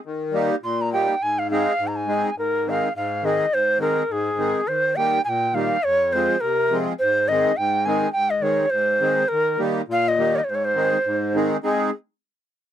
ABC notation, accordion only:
X:1
M:2/4
L:1/8
Q:"Swing 16ths" 1/4=104
K:Ab
V:1 name="Accordion"
z [G,B,EG] z [G,B,EG] | z [A,CEA] z [A,CEA] | z [E,A,CEA] z [E,A,CEA] | z [E,A,CEA] z [E,A,CEA] |
z [E,G,B,EG] z [E,G,B,EG] | z [F,A,CFA] z [F,A,CFA] | z [E,A,CEA] z [E,A,CEA] | z [E,A,CEA] z [E,A,CEA] |
z [E,G,B,EG] z [E,G,B,EG] | z [E,A,CEA] z [E,A,CEA] | [A,CEA] z3 |]
V:2 name="Accordion" clef=bass
E,2 B,,2 | A,,2 A,,2 | A,,2 A,,2 | A,,2 A,,2 |
E,2 B,,2 | F,,2 C,2 | A,,2 A,,2 | A,,2 A,,2 |
E,2 B,,2 | A,,2 A,,2 | z4 |]